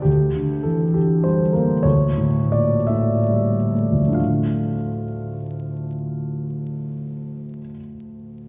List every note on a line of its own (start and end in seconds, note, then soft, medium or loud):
0.02 1.79 D2 soft
0.02 0.64 G4 medium
0.35 0.83 D3 soft
0.63 0.95 E3 soft
0.63 0.94 A4 medium
0.94 1.42 D3 soft
0.94 1.24 G4 soft
1.24 1.72 G3 soft
1.24 1.53 C5 medium
1.53 1.84 A#3 soft
1.53 1.84 A#4 soft
1.83 3.90 D2 soft
1.83 2.51 C#5 medium
2.17 2.74 A2 soft
2.52 2.90 A#2 soft
2.52 2.89 D5 medium
2.87 3.55 A2 soft
2.87 4.16 E5 medium
3.29 4.01 G3 soft
3.75 4.02 A3 soft
3.91 7.56 D2 soft
3.91 7.59 A2 soft
3.99 7.63 F3 soft
4.04 7.68 A3 soft
4.04 7.72 D4 soft
4.12 7.77 F4 soft
4.12 7.79 F5 soft